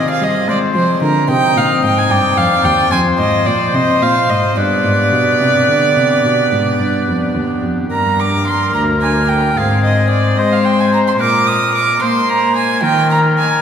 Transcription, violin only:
0.10 F5
0.23 D#5
0.50 D5
0.75 C5
1.03 A#4
1.30 G5
1.57 F5
1.85 G5
1.98 G#5
2.10 G5
2.37 F5
2.64 G5
2.92 G#5
3.19 D#5
3.46 D5
3.74 D#5
4.02 F5
4.29 D#5
4.57 D5
7.92 A#5
8.20 D6
8.47 C6
8.74 A#5
9.01 G#5
9.29 G5
9.57 F5
9.84 D#5
10.10 D5
10.37 D#5
10.52 F5
10.65 G5
10.80 G#5
10.93 A#5
11.08 C6
11.20 D6
11.47 D#6
11.75 D6
12.02 C6
12.29 A#5
12.56 G#5
12.83 G5
13.11 A#5
13.38 G#5

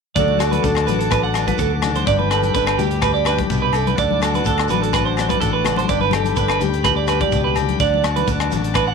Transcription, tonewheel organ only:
0.16 F#5 A5 D6
2.06 G5 B5
3.96 F#5 A5
5.90 G5 B5
7.81 F#5 A5

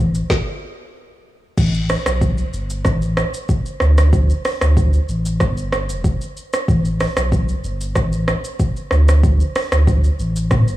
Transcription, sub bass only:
Already playing: A1
1.57 A1
2.06 B1
2.53 G1
2.85 A1
3.81 D2
4.61 D2
5.08 A1
5.41 G1
5.89 E1
6.68 A1
7.17 B1
7.64 G1
7.96 A1
8.91 D2
9.72 D2
10.19 A1
10.51 G1

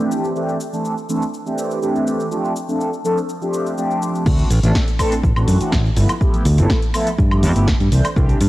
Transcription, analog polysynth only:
Already playing: E3 A3 C4 D4 G4
0.35 E3 A3 C4 D4 G4
0.72 E3 A3 C4 D4 A4
1.09 E3 A3 C4 D4 A4
1.45 E3 A3 C4 D4 G4
1.81 E3 A3 C4 D4 G4
2.30 F3 A3 C4 D4 G4
2.68 F3 A3 C4 D4 A4
3.04 F3 A3 C4 D4 A4
3.41 F3 A3 C4 D4 G4
3.77 F3 A3 C4 D4 G4
4.26 C4 D4 F#4
4.63 E3 A3 C4 D4 A4
4.99 E3 A3 C4 D4 A4
5.36 E3 A3 C4 D4 F#4
5.60 E3 A3 C4 D4 F#4
5.96 F3 A3 B3 E4 B4
6.21 F3 A3 B3 E4 G4
6.58 F3 A3 B3 E4 A4
6.94 F3 A3 B3 E4 A4
7.31 F3 A3 B3 E4 G4
7.55 F3 A3 B3 E4 G4
7.91 E3 A3 C4 D4 C5
8.16 E3 A3 C4 D4 G4

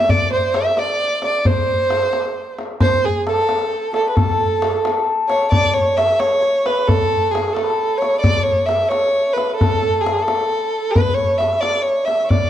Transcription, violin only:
Already playing: E5
0.10 D5
0.32 C5
0.55 E5
0.79 D5
1.24 D5
1.45 C5
2.81 C5
3.05 G#4
3.29 A4
3.94 A4
4.09 B4
4.15 A4
5.28 C#5
5.51 D5
5.73 C#5
5.97 E5
6.19 C#5
6.66 B4
6.87 A4
7.31 G#4
7.53 A4
7.97 C#5
8.20 D5
8.43 C#5
8.66 E5
8.88 C#5
9.33 B4
9.55 A4
10.01 G#4
10.23 A4
10.90 B4
11.14 C#5
11.38 E5
11.61 D5
11.82 C#5
12.05 E5
12.29 D5

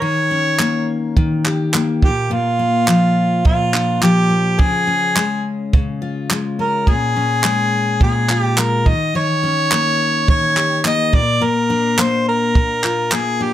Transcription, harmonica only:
0.03 C#5
2.04 G4
2.33 F4
3.46 F4
4.03 G4
4.60 G#4
6.60 A#4
6.88 G#4
8.03 G#4
8.41 G4
8.59 A#4
8.88 D#5
9.16 C#5
10.29 C#5
10.87 D#5
11.15 D5
11.43 A#4
12.00 C5
12.28 A#4
13.13 G#4
13.42 G4

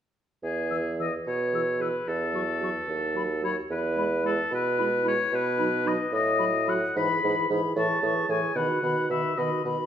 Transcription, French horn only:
0.71 E3
1.00 E3
1.54 E3
1.80 E3
2.33 F#3
2.61 F#3
3.14 F#3
3.43 F#3
3.96 G#3
4.24 G#3
4.80 G#3
5.06 G#3
5.60 F#3
5.86 F#3
6.40 F#3
6.68 F#3
6.97 E3
7.24 E3
7.50 E3
7.76 E3
8.03 E3
8.29 E3
8.56 D#3
8.82 D#3
9.11 D#3
9.38 D#3
9.64 D#3

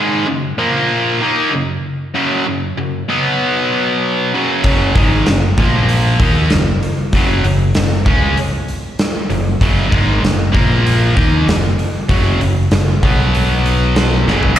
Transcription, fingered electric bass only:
4.64 F#1
4.95 G#1
5.28 F#1
5.58 A#1
6.20 D#2
6.51 F#1
7.12 F#1
7.45 F#1
7.76 F#1
8.06 C#2
9.30 F#1
9.61 F#1
9.92 G#1
10.23 F#1
10.54 A#1
11.17 D#2
11.47 F#1
12.09 F#1
12.40 F#1
12.72 F#1
13.03 B1
14.26 F#1

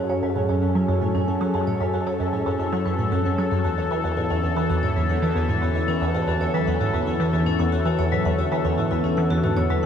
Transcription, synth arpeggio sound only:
0.10 F#3
0.23 F#2
0.36 A2
0.49 F#2
0.62 F#2
0.75 F#3
0.88 F#2
1.01 A2
1.15 F#2
1.28 F#2
1.41 F#3
1.54 F#2
1.67 A2
1.80 F#2
1.94 F#2
2.07 F#3
2.20 F#2
2.33 A2
2.46 F#2
2.59 F#2
2.73 F#3
2.86 F#2
2.99 A2
3.12 F#2
3.25 F#2
3.38 F#3
3.52 F#2
3.65 E2
3.78 E2
3.91 E3
4.04 E2
4.17 G#2
4.30 E2
4.43 E2
4.57 E3
4.70 E2
4.83 G#2
4.96 E2
5.09 E2
5.22 E3
5.36 E2
5.49 G#2
5.62 E2
5.75 E2
5.88 E3
6.01 E2
6.15 G#2
6.27 E2
6.41 E2
6.54 E3
6.67 E2
6.80 G#2
6.93 E2
7.07 E2
7.20 E3
7.33 E2
7.46 G#2
7.59 E2
7.73 E2
7.86 E3
7.99 E2
8.12 G#2
8.25 E2
8.38 E2
8.52 E3
8.65 E2
8.78 G#2
8.91 E2
9.04 E2
9.18 E3
9.31 E2
9.44 G#2
9.57 E2
9.70 E2

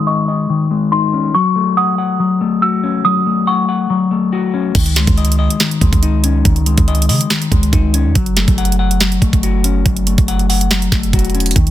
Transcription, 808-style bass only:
4.75 C#2
5.07 C#2
5.81 C#2
5.93 C#2
6.45 C#2
6.78 C#2
7.09 C#3
7.52 C#2
7.73 C#2
8.05 E2
8.15 F#1
8.48 F#1
9.22 F#1
9.33 F#1
9.86 F#1
10.18 F#1
10.92 F#1
11.13 E1
11.56 C#2

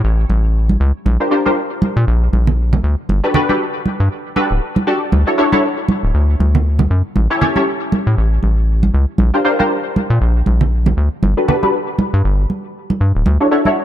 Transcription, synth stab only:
1.20 D4 F4 G4 A#4 C5
1.31 D4 F4 G4 A#4 C5
1.46 D4 F4 G4 A#4 C5
3.23 D4 F#4 G4 A4 B4
3.34 D4 F#4 G4 A4 B4
3.49 D4 F#4 G4 A4 B4
4.36 D4 F#4 G4 A4 B4
4.87 D4 F#4 G4 A4 D5
5.27 D4 E4 F#4 A4 C#5
5.38 D4 E4 F#4 A4 C#5
5.52 D4 E4 F#4 A4 C#5
7.30 C#4 E4 G4 A4 C#5
7.41 C#4 E4 G4 A4 C#5
7.56 C#4 E4 G4 A4 C#5
9.34 D4 F4 G4 A#4 C5
9.45 D4 F4 G4 A#4 C5
9.59 D4 F4 G4 A#4 C5
11.37 D4 F#4 G4 A4 B4
11.48 D4 F#4 G4 A4 B4
11.63 D4 F#4 G4 A4 B4
13.40 D4 E4 F#4 A4 C#5
13.51 D4 E4 F#4 A4 C#5
13.66 D4 E4 F#4 A4 C#5

